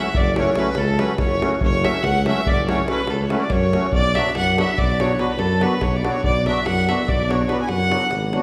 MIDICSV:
0, 0, Header, 1, 6, 480
1, 0, Start_track
1, 0, Key_signature, 3, "minor"
1, 0, Tempo, 419580
1, 1849, Time_signature, 11, 3, 24, 8
1, 9638, End_track
2, 0, Start_track
2, 0, Title_t, "Fiddle"
2, 0, Program_c, 0, 110
2, 0, Note_on_c, 0, 76, 106
2, 189, Note_on_c, 0, 74, 108
2, 206, Note_off_c, 0, 76, 0
2, 425, Note_off_c, 0, 74, 0
2, 432, Note_on_c, 0, 73, 97
2, 670, Note_on_c, 0, 71, 109
2, 687, Note_off_c, 0, 73, 0
2, 890, Note_on_c, 0, 69, 104
2, 907, Note_off_c, 0, 71, 0
2, 1131, Note_on_c, 0, 71, 99
2, 1148, Note_off_c, 0, 69, 0
2, 1349, Note_off_c, 0, 71, 0
2, 1356, Note_on_c, 0, 73, 101
2, 1813, Note_off_c, 0, 73, 0
2, 1860, Note_on_c, 0, 73, 119
2, 2111, Note_on_c, 0, 76, 112
2, 2128, Note_off_c, 0, 73, 0
2, 2321, Note_on_c, 0, 78, 108
2, 2338, Note_off_c, 0, 76, 0
2, 2590, Note_off_c, 0, 78, 0
2, 2596, Note_on_c, 0, 76, 101
2, 2834, Note_on_c, 0, 74, 113
2, 2851, Note_off_c, 0, 76, 0
2, 3068, Note_off_c, 0, 74, 0
2, 3075, Note_on_c, 0, 73, 85
2, 3281, Note_off_c, 0, 73, 0
2, 3298, Note_on_c, 0, 71, 102
2, 3549, Note_on_c, 0, 69, 102
2, 3566, Note_off_c, 0, 71, 0
2, 3702, Note_off_c, 0, 69, 0
2, 3709, Note_on_c, 0, 73, 69
2, 3805, Note_on_c, 0, 71, 96
2, 3822, Note_off_c, 0, 73, 0
2, 3905, Note_off_c, 0, 71, 0
2, 3911, Note_on_c, 0, 74, 78
2, 4011, Note_on_c, 0, 73, 100
2, 4028, Note_off_c, 0, 74, 0
2, 4496, Note_off_c, 0, 73, 0
2, 4503, Note_on_c, 0, 74, 122
2, 4746, Note_on_c, 0, 76, 119
2, 4763, Note_off_c, 0, 74, 0
2, 4977, Note_off_c, 0, 76, 0
2, 4996, Note_on_c, 0, 78, 116
2, 5231, Note_off_c, 0, 78, 0
2, 5261, Note_on_c, 0, 76, 100
2, 5469, Note_on_c, 0, 74, 114
2, 5487, Note_off_c, 0, 76, 0
2, 5727, Note_on_c, 0, 73, 100
2, 5744, Note_off_c, 0, 74, 0
2, 5956, Note_on_c, 0, 71, 93
2, 5974, Note_off_c, 0, 73, 0
2, 6172, Note_on_c, 0, 69, 108
2, 6189, Note_off_c, 0, 71, 0
2, 6441, Note_on_c, 0, 71, 100
2, 6458, Note_off_c, 0, 69, 0
2, 6664, Note_on_c, 0, 73, 95
2, 6681, Note_off_c, 0, 71, 0
2, 6829, Note_on_c, 0, 74, 85
2, 6847, Note_off_c, 0, 73, 0
2, 7002, Note_on_c, 0, 73, 110
2, 7019, Note_off_c, 0, 74, 0
2, 7137, Note_off_c, 0, 73, 0
2, 7144, Note_on_c, 0, 74, 107
2, 7380, Note_off_c, 0, 74, 0
2, 7393, Note_on_c, 0, 76, 104
2, 7619, Note_on_c, 0, 78, 122
2, 7637, Note_off_c, 0, 76, 0
2, 7880, Note_on_c, 0, 76, 96
2, 7897, Note_off_c, 0, 78, 0
2, 8102, Note_on_c, 0, 74, 96
2, 8119, Note_off_c, 0, 76, 0
2, 8349, Note_on_c, 0, 73, 84
2, 8366, Note_off_c, 0, 74, 0
2, 8572, Note_on_c, 0, 71, 83
2, 8590, Note_off_c, 0, 73, 0
2, 8699, Note_off_c, 0, 71, 0
2, 8706, Note_on_c, 0, 80, 80
2, 8790, Note_on_c, 0, 78, 118
2, 8807, Note_off_c, 0, 80, 0
2, 9537, Note_off_c, 0, 78, 0
2, 9638, End_track
3, 0, Start_track
3, 0, Title_t, "Violin"
3, 0, Program_c, 1, 40
3, 0, Note_on_c, 1, 76, 92
3, 199, Note_on_c, 1, 74, 99
3, 216, Note_off_c, 1, 76, 0
3, 435, Note_off_c, 1, 74, 0
3, 457, Note_on_c, 1, 73, 94
3, 677, Note_on_c, 1, 71, 90
3, 694, Note_off_c, 1, 73, 0
3, 897, Note_on_c, 1, 69, 101
3, 914, Note_off_c, 1, 71, 0
3, 1143, Note_on_c, 1, 71, 80
3, 1161, Note_off_c, 1, 69, 0
3, 1366, Note_off_c, 1, 71, 0
3, 1372, Note_on_c, 1, 73, 103
3, 1821, Note_off_c, 1, 73, 0
3, 1867, Note_on_c, 1, 73, 103
3, 2107, Note_on_c, 1, 76, 89
3, 2124, Note_off_c, 1, 73, 0
3, 2338, Note_on_c, 1, 78, 101
3, 2355, Note_off_c, 1, 76, 0
3, 2598, Note_off_c, 1, 78, 0
3, 2607, Note_on_c, 1, 76, 89
3, 2851, Note_on_c, 1, 74, 100
3, 2868, Note_off_c, 1, 76, 0
3, 3084, Note_off_c, 1, 74, 0
3, 3090, Note_on_c, 1, 73, 97
3, 3289, Note_off_c, 1, 73, 0
3, 3322, Note_on_c, 1, 71, 89
3, 3558, Note_on_c, 1, 69, 88
3, 3575, Note_off_c, 1, 71, 0
3, 3724, Note_off_c, 1, 69, 0
3, 3731, Note_on_c, 1, 73, 52
3, 3795, Note_on_c, 1, 71, 73
3, 3812, Note_off_c, 1, 73, 0
3, 3920, Note_off_c, 1, 71, 0
3, 3927, Note_on_c, 1, 74, 64
3, 4019, Note_on_c, 1, 73, 91
3, 4036, Note_off_c, 1, 74, 0
3, 4500, Note_off_c, 1, 73, 0
3, 4514, Note_on_c, 1, 74, 115
3, 4766, Note_on_c, 1, 76, 91
3, 4783, Note_off_c, 1, 74, 0
3, 4987, Note_off_c, 1, 76, 0
3, 4999, Note_on_c, 1, 78, 90
3, 5232, Note_off_c, 1, 78, 0
3, 5248, Note_on_c, 1, 76, 93
3, 5484, Note_on_c, 1, 74, 101
3, 5502, Note_off_c, 1, 76, 0
3, 5732, Note_on_c, 1, 73, 92
3, 5749, Note_off_c, 1, 74, 0
3, 5942, Note_on_c, 1, 71, 91
3, 5959, Note_off_c, 1, 73, 0
3, 6173, Note_on_c, 1, 69, 95
3, 6190, Note_off_c, 1, 71, 0
3, 6423, Note_on_c, 1, 71, 83
3, 6440, Note_off_c, 1, 69, 0
3, 6661, Note_on_c, 1, 73, 87
3, 6679, Note_off_c, 1, 71, 0
3, 6812, Note_on_c, 1, 74, 77
3, 6829, Note_off_c, 1, 73, 0
3, 6996, Note_on_c, 1, 73, 87
3, 7013, Note_off_c, 1, 74, 0
3, 7140, Note_off_c, 1, 73, 0
3, 7146, Note_on_c, 1, 74, 111
3, 7381, Note_off_c, 1, 74, 0
3, 7408, Note_on_c, 1, 76, 80
3, 7633, Note_on_c, 1, 78, 84
3, 7650, Note_off_c, 1, 76, 0
3, 7877, Note_on_c, 1, 76, 83
3, 7895, Note_off_c, 1, 78, 0
3, 8104, Note_on_c, 1, 74, 98
3, 8121, Note_off_c, 1, 76, 0
3, 8356, Note_on_c, 1, 73, 89
3, 8373, Note_off_c, 1, 74, 0
3, 8564, Note_on_c, 1, 71, 78
3, 8581, Note_off_c, 1, 73, 0
3, 8686, Note_off_c, 1, 71, 0
3, 8693, Note_on_c, 1, 80, 65
3, 8774, Note_on_c, 1, 78, 96
3, 8792, Note_off_c, 1, 80, 0
3, 9529, Note_off_c, 1, 78, 0
3, 9638, End_track
4, 0, Start_track
4, 0, Title_t, "Accordion"
4, 0, Program_c, 2, 21
4, 413, Note_on_c, 2, 54, 67
4, 421, Note_on_c, 2, 57, 60
4, 429, Note_on_c, 2, 61, 66
4, 437, Note_on_c, 2, 66, 75
4, 570, Note_off_c, 2, 54, 0
4, 574, Note_off_c, 2, 57, 0
4, 578, Note_off_c, 2, 61, 0
4, 582, Note_off_c, 2, 66, 0
4, 642, Note_on_c, 2, 54, 66
4, 644, Note_on_c, 2, 57, 67
4, 649, Note_on_c, 2, 61, 63
4, 659, Note_on_c, 2, 66, 82
4, 796, Note_off_c, 2, 54, 0
4, 797, Note_off_c, 2, 57, 0
4, 800, Note_off_c, 2, 61, 0
4, 805, Note_off_c, 2, 66, 0
4, 1119, Note_on_c, 2, 54, 67
4, 1127, Note_on_c, 2, 57, 61
4, 1131, Note_on_c, 2, 61, 55
4, 1143, Note_on_c, 2, 66, 74
4, 1280, Note_off_c, 2, 54, 0
4, 1284, Note_off_c, 2, 57, 0
4, 1286, Note_off_c, 2, 61, 0
4, 1292, Note_off_c, 2, 66, 0
4, 1611, Note_on_c, 2, 54, 78
4, 1619, Note_on_c, 2, 57, 57
4, 1623, Note_on_c, 2, 61, 60
4, 1633, Note_on_c, 2, 66, 73
4, 1771, Note_off_c, 2, 54, 0
4, 1775, Note_off_c, 2, 57, 0
4, 1777, Note_off_c, 2, 61, 0
4, 1782, Note_off_c, 2, 66, 0
4, 2081, Note_on_c, 2, 54, 74
4, 2092, Note_on_c, 2, 57, 69
4, 2095, Note_on_c, 2, 61, 61
4, 2105, Note_on_c, 2, 66, 70
4, 2250, Note_off_c, 2, 54, 0
4, 2256, Note_off_c, 2, 57, 0
4, 2257, Note_off_c, 2, 61, 0
4, 2262, Note_off_c, 2, 66, 0
4, 2576, Note_on_c, 2, 54, 72
4, 2586, Note_on_c, 2, 57, 59
4, 2594, Note_on_c, 2, 61, 66
4, 2606, Note_on_c, 2, 66, 79
4, 2742, Note_off_c, 2, 54, 0
4, 2747, Note_off_c, 2, 57, 0
4, 2751, Note_off_c, 2, 61, 0
4, 2757, Note_off_c, 2, 66, 0
4, 3056, Note_on_c, 2, 54, 69
4, 3061, Note_on_c, 2, 57, 66
4, 3068, Note_on_c, 2, 61, 61
4, 3074, Note_on_c, 2, 66, 74
4, 3215, Note_off_c, 2, 54, 0
4, 3217, Note_off_c, 2, 57, 0
4, 3221, Note_off_c, 2, 61, 0
4, 3224, Note_off_c, 2, 66, 0
4, 3289, Note_on_c, 2, 54, 73
4, 3293, Note_on_c, 2, 57, 61
4, 3299, Note_on_c, 2, 61, 59
4, 3306, Note_on_c, 2, 66, 78
4, 3443, Note_off_c, 2, 54, 0
4, 3445, Note_off_c, 2, 57, 0
4, 3448, Note_off_c, 2, 61, 0
4, 3451, Note_off_c, 2, 66, 0
4, 3770, Note_on_c, 2, 54, 74
4, 3775, Note_on_c, 2, 57, 72
4, 3781, Note_on_c, 2, 61, 56
4, 3792, Note_on_c, 2, 66, 81
4, 3928, Note_off_c, 2, 54, 0
4, 3931, Note_off_c, 2, 57, 0
4, 3934, Note_off_c, 2, 61, 0
4, 3939, Note_off_c, 2, 66, 0
4, 4264, Note_on_c, 2, 54, 74
4, 4268, Note_on_c, 2, 57, 60
4, 4274, Note_on_c, 2, 61, 57
4, 4281, Note_on_c, 2, 66, 71
4, 4419, Note_off_c, 2, 54, 0
4, 4421, Note_off_c, 2, 57, 0
4, 4424, Note_off_c, 2, 61, 0
4, 4428, Note_off_c, 2, 66, 0
4, 4752, Note_on_c, 2, 54, 78
4, 4760, Note_on_c, 2, 59, 70
4, 4763, Note_on_c, 2, 62, 63
4, 4771, Note_on_c, 2, 66, 82
4, 4907, Note_off_c, 2, 54, 0
4, 4911, Note_off_c, 2, 59, 0
4, 4912, Note_off_c, 2, 62, 0
4, 4916, Note_off_c, 2, 66, 0
4, 5231, Note_on_c, 2, 54, 68
4, 5235, Note_on_c, 2, 59, 65
4, 5241, Note_on_c, 2, 62, 62
4, 5246, Note_on_c, 2, 66, 72
4, 5390, Note_off_c, 2, 54, 0
4, 5392, Note_off_c, 2, 59, 0
4, 5395, Note_off_c, 2, 62, 0
4, 5398, Note_off_c, 2, 66, 0
4, 5701, Note_on_c, 2, 54, 70
4, 5707, Note_on_c, 2, 59, 63
4, 5713, Note_on_c, 2, 62, 59
4, 5717, Note_on_c, 2, 66, 77
4, 5858, Note_off_c, 2, 54, 0
4, 5861, Note_off_c, 2, 59, 0
4, 5864, Note_off_c, 2, 62, 0
4, 5866, Note_off_c, 2, 66, 0
4, 5926, Note_on_c, 2, 54, 75
4, 5936, Note_on_c, 2, 59, 67
4, 5944, Note_on_c, 2, 62, 62
4, 5944, Note_on_c, 2, 66, 78
4, 6082, Note_off_c, 2, 54, 0
4, 6087, Note_off_c, 2, 59, 0
4, 6091, Note_off_c, 2, 62, 0
4, 6091, Note_off_c, 2, 66, 0
4, 6402, Note_on_c, 2, 54, 62
4, 6409, Note_on_c, 2, 59, 62
4, 6420, Note_on_c, 2, 62, 72
4, 6421, Note_on_c, 2, 66, 85
4, 6564, Note_off_c, 2, 54, 0
4, 6568, Note_off_c, 2, 59, 0
4, 6573, Note_off_c, 2, 62, 0
4, 6573, Note_off_c, 2, 66, 0
4, 6899, Note_on_c, 2, 54, 66
4, 6901, Note_on_c, 2, 59, 67
4, 6911, Note_on_c, 2, 62, 64
4, 6914, Note_on_c, 2, 66, 79
4, 7056, Note_off_c, 2, 54, 0
4, 7057, Note_off_c, 2, 59, 0
4, 7062, Note_off_c, 2, 62, 0
4, 7064, Note_off_c, 2, 66, 0
4, 7380, Note_on_c, 2, 54, 72
4, 7391, Note_on_c, 2, 59, 65
4, 7401, Note_on_c, 2, 66, 86
4, 7402, Note_on_c, 2, 62, 60
4, 7539, Note_off_c, 2, 54, 0
4, 7545, Note_off_c, 2, 59, 0
4, 7550, Note_off_c, 2, 66, 0
4, 7551, Note_off_c, 2, 62, 0
4, 7863, Note_on_c, 2, 54, 72
4, 7875, Note_on_c, 2, 59, 60
4, 7879, Note_on_c, 2, 62, 65
4, 7880, Note_on_c, 2, 66, 78
4, 8024, Note_off_c, 2, 54, 0
4, 8030, Note_off_c, 2, 59, 0
4, 8032, Note_off_c, 2, 62, 0
4, 8033, Note_off_c, 2, 66, 0
4, 8333, Note_on_c, 2, 54, 74
4, 8343, Note_on_c, 2, 59, 55
4, 8345, Note_on_c, 2, 62, 62
4, 8349, Note_on_c, 2, 66, 77
4, 8492, Note_off_c, 2, 54, 0
4, 8497, Note_off_c, 2, 59, 0
4, 8498, Note_off_c, 2, 62, 0
4, 8500, Note_off_c, 2, 66, 0
4, 8553, Note_on_c, 2, 54, 75
4, 8561, Note_on_c, 2, 59, 60
4, 8567, Note_on_c, 2, 62, 60
4, 8574, Note_on_c, 2, 66, 77
4, 8713, Note_off_c, 2, 54, 0
4, 8717, Note_off_c, 2, 59, 0
4, 8720, Note_off_c, 2, 62, 0
4, 8723, Note_off_c, 2, 66, 0
4, 9029, Note_on_c, 2, 54, 64
4, 9036, Note_on_c, 2, 59, 65
4, 9045, Note_on_c, 2, 62, 58
4, 9053, Note_on_c, 2, 66, 76
4, 9195, Note_off_c, 2, 54, 0
4, 9198, Note_off_c, 2, 59, 0
4, 9203, Note_off_c, 2, 62, 0
4, 9206, Note_off_c, 2, 66, 0
4, 9518, Note_on_c, 2, 54, 73
4, 9526, Note_on_c, 2, 59, 81
4, 9527, Note_on_c, 2, 62, 78
4, 9539, Note_on_c, 2, 66, 89
4, 9638, Note_off_c, 2, 54, 0
4, 9638, Note_off_c, 2, 59, 0
4, 9638, Note_off_c, 2, 62, 0
4, 9638, Note_off_c, 2, 66, 0
4, 9638, End_track
5, 0, Start_track
5, 0, Title_t, "Tuba"
5, 0, Program_c, 3, 58
5, 175, Note_on_c, 3, 30, 103
5, 592, Note_off_c, 3, 30, 0
5, 873, Note_on_c, 3, 37, 111
5, 1166, Note_off_c, 3, 37, 0
5, 1356, Note_on_c, 3, 30, 87
5, 1651, Note_off_c, 3, 30, 0
5, 1835, Note_on_c, 3, 30, 108
5, 2133, Note_off_c, 3, 30, 0
5, 2322, Note_on_c, 3, 37, 103
5, 2620, Note_off_c, 3, 37, 0
5, 2809, Note_on_c, 3, 30, 84
5, 3229, Note_off_c, 3, 30, 0
5, 3514, Note_on_c, 3, 37, 94
5, 3808, Note_off_c, 3, 37, 0
5, 4000, Note_on_c, 3, 42, 103
5, 4295, Note_off_c, 3, 42, 0
5, 4485, Note_on_c, 3, 35, 100
5, 4780, Note_off_c, 3, 35, 0
5, 4984, Note_on_c, 3, 42, 101
5, 5275, Note_off_c, 3, 42, 0
5, 5463, Note_on_c, 3, 35, 92
5, 5878, Note_off_c, 3, 35, 0
5, 6156, Note_on_c, 3, 42, 104
5, 6449, Note_off_c, 3, 42, 0
5, 6634, Note_on_c, 3, 35, 94
5, 6929, Note_off_c, 3, 35, 0
5, 7130, Note_on_c, 3, 35, 99
5, 7423, Note_off_c, 3, 35, 0
5, 7622, Note_on_c, 3, 42, 99
5, 7913, Note_off_c, 3, 42, 0
5, 8108, Note_on_c, 3, 35, 88
5, 8520, Note_off_c, 3, 35, 0
5, 8803, Note_on_c, 3, 42, 99
5, 9091, Note_off_c, 3, 42, 0
5, 9278, Note_on_c, 3, 32, 93
5, 9569, Note_off_c, 3, 32, 0
5, 9638, End_track
6, 0, Start_track
6, 0, Title_t, "Davul"
6, 166, Note_on_c, 9, 43, 108
6, 280, Note_off_c, 9, 43, 0
6, 414, Note_on_c, 9, 37, 89
6, 529, Note_off_c, 9, 37, 0
6, 634, Note_on_c, 9, 37, 83
6, 749, Note_off_c, 9, 37, 0
6, 857, Note_on_c, 9, 37, 74
6, 971, Note_off_c, 9, 37, 0
6, 1132, Note_on_c, 9, 37, 84
6, 1247, Note_off_c, 9, 37, 0
6, 1354, Note_on_c, 9, 37, 78
6, 1354, Note_on_c, 9, 43, 81
6, 1468, Note_off_c, 9, 37, 0
6, 1468, Note_off_c, 9, 43, 0
6, 1502, Note_on_c, 9, 37, 28
6, 1616, Note_off_c, 9, 37, 0
6, 1628, Note_on_c, 9, 37, 79
6, 1742, Note_off_c, 9, 37, 0
6, 1841, Note_on_c, 9, 43, 96
6, 1955, Note_off_c, 9, 43, 0
6, 2112, Note_on_c, 9, 37, 83
6, 2226, Note_off_c, 9, 37, 0
6, 2232, Note_on_c, 9, 37, 32
6, 2332, Note_off_c, 9, 37, 0
6, 2332, Note_on_c, 9, 37, 80
6, 2446, Note_off_c, 9, 37, 0
6, 2584, Note_on_c, 9, 37, 86
6, 2699, Note_off_c, 9, 37, 0
6, 2821, Note_on_c, 9, 43, 102
6, 2935, Note_off_c, 9, 43, 0
6, 3073, Note_on_c, 9, 37, 83
6, 3187, Note_off_c, 9, 37, 0
6, 3294, Note_on_c, 9, 37, 81
6, 3409, Note_off_c, 9, 37, 0
6, 3517, Note_on_c, 9, 37, 77
6, 3631, Note_off_c, 9, 37, 0
6, 3778, Note_on_c, 9, 37, 78
6, 3893, Note_off_c, 9, 37, 0
6, 4003, Note_on_c, 9, 37, 66
6, 4003, Note_on_c, 9, 43, 70
6, 4117, Note_off_c, 9, 37, 0
6, 4117, Note_off_c, 9, 43, 0
6, 4143, Note_on_c, 9, 37, 28
6, 4257, Note_off_c, 9, 37, 0
6, 4271, Note_on_c, 9, 37, 77
6, 4385, Note_off_c, 9, 37, 0
6, 4488, Note_on_c, 9, 43, 89
6, 4602, Note_off_c, 9, 43, 0
6, 4749, Note_on_c, 9, 37, 79
6, 4864, Note_off_c, 9, 37, 0
6, 4876, Note_on_c, 9, 37, 27
6, 4977, Note_off_c, 9, 37, 0
6, 4977, Note_on_c, 9, 37, 72
6, 5092, Note_off_c, 9, 37, 0
6, 5243, Note_on_c, 9, 37, 84
6, 5358, Note_off_c, 9, 37, 0
6, 5469, Note_on_c, 9, 43, 84
6, 5584, Note_off_c, 9, 43, 0
6, 5720, Note_on_c, 9, 37, 79
6, 5834, Note_off_c, 9, 37, 0
6, 5942, Note_on_c, 9, 37, 67
6, 6056, Note_off_c, 9, 37, 0
6, 6165, Note_on_c, 9, 37, 65
6, 6279, Note_off_c, 9, 37, 0
6, 6421, Note_on_c, 9, 37, 75
6, 6535, Note_off_c, 9, 37, 0
6, 6650, Note_on_c, 9, 37, 73
6, 6650, Note_on_c, 9, 43, 62
6, 6764, Note_off_c, 9, 37, 0
6, 6764, Note_off_c, 9, 43, 0
6, 6784, Note_on_c, 9, 37, 23
6, 6899, Note_off_c, 9, 37, 0
6, 6916, Note_on_c, 9, 37, 71
6, 7030, Note_off_c, 9, 37, 0
6, 7137, Note_on_c, 9, 43, 82
6, 7251, Note_off_c, 9, 43, 0
6, 7392, Note_on_c, 9, 37, 69
6, 7506, Note_off_c, 9, 37, 0
6, 7620, Note_on_c, 9, 37, 77
6, 7734, Note_off_c, 9, 37, 0
6, 7759, Note_on_c, 9, 37, 21
6, 7874, Note_off_c, 9, 37, 0
6, 7879, Note_on_c, 9, 37, 74
6, 7989, Note_off_c, 9, 37, 0
6, 7989, Note_on_c, 9, 37, 26
6, 8104, Note_off_c, 9, 37, 0
6, 8105, Note_on_c, 9, 43, 85
6, 8219, Note_off_c, 9, 43, 0
6, 8359, Note_on_c, 9, 37, 72
6, 8466, Note_off_c, 9, 37, 0
6, 8466, Note_on_c, 9, 37, 27
6, 8570, Note_off_c, 9, 37, 0
6, 8570, Note_on_c, 9, 37, 66
6, 8685, Note_off_c, 9, 37, 0
6, 8794, Note_on_c, 9, 37, 66
6, 8908, Note_off_c, 9, 37, 0
6, 8919, Note_on_c, 9, 37, 27
6, 9034, Note_off_c, 9, 37, 0
6, 9055, Note_on_c, 9, 37, 78
6, 9166, Note_off_c, 9, 37, 0
6, 9166, Note_on_c, 9, 37, 28
6, 9275, Note_off_c, 9, 37, 0
6, 9275, Note_on_c, 9, 37, 65
6, 9390, Note_off_c, 9, 37, 0
6, 9408, Note_on_c, 9, 37, 26
6, 9523, Note_off_c, 9, 37, 0
6, 9530, Note_on_c, 9, 37, 64
6, 9638, Note_off_c, 9, 37, 0
6, 9638, End_track
0, 0, End_of_file